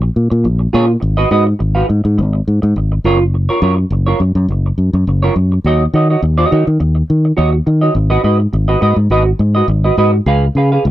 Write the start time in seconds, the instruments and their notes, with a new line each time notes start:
0.02 muted clean electric guitar stroke
0.16 fingered electric bass A#2
0.30 fingered electric bass A#2, muted clean electric guitar stroke
0.44 fingered electric bass A#1, muted clean electric guitar stroke
0.59 muted clean electric guitar stroke
0.73 fingered electric bass A#2, clean electric guitar F4 G#4 C#5
0.88 muted clean electric guitar stroke
1.00 fingered electric bass G#1, muted clean electric guitar stroke
1.17 clean electric guitar F#4 B4 D#5
1.31 fingered electric bass G#2, clean electric guitar F#4 B4 D#5
1.47 muted clean electric guitar stroke
1.59 fingered electric bass G#1, muted clean electric guitar stroke
1.75 clean electric guitar F#4 B4 F5
1.89 fingered electric bass G#2, muted clean electric guitar stroke
2.04 fingered electric bass G#2, muted clean electric guitar stroke
2.18 fingered electric bass G#1, muted clean electric guitar stroke
2.33 muted clean electric guitar stroke
2.48 fingered electric bass G#2
2.62 fingered electric bass G#2, muted clean electric guitar stroke
2.76 fingered electric bass G#1, muted clean electric guitar stroke
2.92 muted clean electric guitar stroke
3.04 fingered electric bass F#1, clean electric guitar F4 A#4 C#5
3.20 muted clean electric guitar stroke
3.34 muted clean electric guitar stroke
3.49 clean electric guitar F4 A#4 C#5
3.62 fingered electric bass F#2, clean electric guitar F4 A#4 C#5
3.77 muted clean electric guitar stroke
3.90 fingered electric bass F#1, muted clean electric guitar stroke
4.06 clean electric guitar F4 A#4 C#5
4.20 fingered electric bass F#2, muted clean electric guitar stroke
4.35 fingered electric bass F#2, muted clean electric guitar stroke
4.48 fingered electric bass F#1, muted clean electric guitar stroke
4.66 muted clean electric guitar stroke
4.78 fingered electric bass F#2
4.93 fingered electric bass F#2, muted clean electric guitar stroke
5.07 fingered electric bass F#1, muted clean electric guitar stroke
5.23 clean electric guitar F4 A#4 C#5
5.36 fingered electric bass F#2, muted clean electric guitar stroke
5.52 muted clean electric guitar stroke
5.64 fingered electric bass D#2, clean electric guitar F#4 C#5 D#5
5.93 fingered electric bass D#3, clean electric guitar F#4 C#5 D#5
6.10 clean electric guitar F#4 C#5 D#5
6.22 fingered electric bass D#2, muted clean electric guitar stroke
6.38 clean electric guitar F#4 C#5 D#5
6.51 fingered electric bass D#3, clean electric guitar F#4 C#5 D#5
6.67 fingered electric bass D#3, muted clean electric guitar stroke
6.80 fingered electric bass D#2, muted clean electric guitar stroke
6.95 muted clean electric guitar stroke
7.10 fingered electric bass D#3
7.25 muted clean electric guitar stroke
7.37 fingered electric bass D#2, clean electric guitar F#4 C#5 D#5
7.53 muted clean electric guitar stroke
7.66 fingered electric bass D#3, muted clean electric guitar stroke
7.81 clean electric guitar F#4 C#5 D#5
7.95 fingered electric bass G#1, muted clean electric guitar stroke
8.10 clean electric guitar F#4 B4 D#5
8.23 fingered electric bass G#2, clean electric guitar F#4 B4 D#5
8.40 muted clean electric guitar stroke
8.53 fingered electric bass G#1, muted clean electric guitar stroke
8.68 clean electric guitar F#4 B4 D#5
8.81 fingered electric bass G#2, clean electric guitar F#4 B4 D#5
8.96 fingered electric bass G#2
9.10 fingered electric bass G#1, clean electric guitar F#4 B4 D#5
9.25 muted clean electric guitar stroke
9.39 fingered electric bass G#2, muted clean electric guitar stroke
9.55 clean electric guitar F#4 B4 D#5
9.68 fingered electric bass G#1, muted clean electric guitar stroke
9.84 clean electric guitar F#4 B4 D#5
9.97 fingered electric bass G#2, clean electric guitar F#4 B4 D#5
10.26 fingered electric bass C#2, clean electric guitar G#4 B4 F5
10.55 fingered electric bass C#3, clean electric guitar G#4 B4 F5
10.72 clean electric guitar G#4 B4 F5
10.85 fingered electric bass C#2, muted clean electric guitar stroke